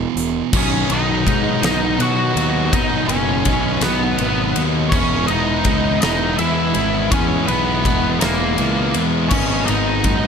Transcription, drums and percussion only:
0.17 closed hi-hat medium
0.53 kick loud
0.53 crash loud
0.90 ride medium
1.27 kick medium
1.27 ride medium
1.63 snare loud
1.63 ride medium
2.00 ride medium
2.37 ride medium
2.73 kick loud
2.73 ride loud
3.09 ride medium
3.45 kick medium
3.45 ride medium
3.81 snare medium
3.81 ride medium
4.18 ride medium
4.56 ride medium
4.92 kick loud
4.92 crash loud
5.28 ride medium
5.65 kick medium
5.65 ride medium
6.02 snare loud
6.02 ride medium
6.39 ride medium
6.74 ride medium
7.12 kick loud
7.12 ride medium
7.48 ride medium
7.85 kick medium
7.85 ride medium
8.21 snare loud
8.21 ride medium
8.58 ride medium
8.94 ride medium
9.31 kick loud
9.31 crash loud
9.68 ride medium
10.04 kick medium
10.04 ride medium

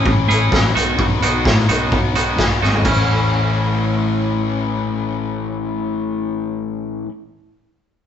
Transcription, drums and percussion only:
0.06 kick loud
0.30 closed hi-hat medium
0.52 kick loud
0.52 snare loud
0.76 closed hi-hat medium
0.99 kick loud
1.22 closed hi-hat medium
1.45 kick medium
1.45 snare medium
1.69 closed hi-hat medium
1.92 kick medium
2.15 closed hi-hat medium
2.39 kick medium
2.39 snare medium
2.63 snare soft
2.74 floor tom medium
2.85 kick medium
2.85 crash medium

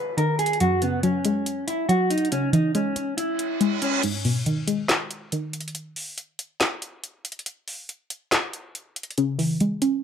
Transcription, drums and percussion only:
0.18 closed hi-hat medium
0.39 closed hi-hat medium
0.46 closed hi-hat medium
0.53 closed hi-hat soft
0.60 closed hi-hat medium
0.82 closed hi-hat medium
1.03 closed hi-hat medium
1.25 closed hi-hat medium
1.46 closed hi-hat medium
1.68 closed hi-hat medium
1.89 closed hi-hat medium
2.11 closed hi-hat medium
2.18 closed hi-hat medium
2.25 closed hi-hat soft
2.32 closed hi-hat medium
2.53 closed hi-hat medium
2.75 closed hi-hat medium
2.96 closed hi-hat medium
3.18 closed hi-hat medium
3.39 closed hi-hat medium
3.61 closed hi-hat medium
3.82 closed hi-hat medium
4.03 closed hi-hat medium
4.03 crash loud
4.25 open hi-hat medium
4.46 closed hi-hat medium
4.68 closed hi-hat medium
4.89 snare loud
4.89 clap medium
4.89 closed hi-hat medium
5.11 closed hi-hat medium
5.32 closed hi-hat medium
5.53 closed hi-hat medium
5.61 closed hi-hat medium
5.68 closed hi-hat soft
5.75 closed hi-hat medium
5.96 open hi-hat medium
6.18 closed hi-hat medium
6.39 closed hi-hat medium
6.60 snare loud
6.60 clap medium
6.60 closed hi-hat medium
6.82 closed hi-hat medium
7.04 closed hi-hat medium
7.25 closed hi-hat medium
7.32 closed hi-hat medium
7.39 closed hi-hat soft
7.46 closed hi-hat medium
7.68 open hi-hat medium
7.89 closed hi-hat medium
8.10 closed hi-hat medium
8.32 snare loud
8.32 clap loud
8.32 closed hi-hat medium
8.53 closed hi-hat medium
8.75 closed hi-hat medium
8.96 closed hi-hat medium
9.03 closed hi-hat medium
9.11 closed hi-hat soft
9.18 closed hi-hat medium
9.39 open hi-hat medium
9.60 closed hi-hat medium
9.82 closed hi-hat medium

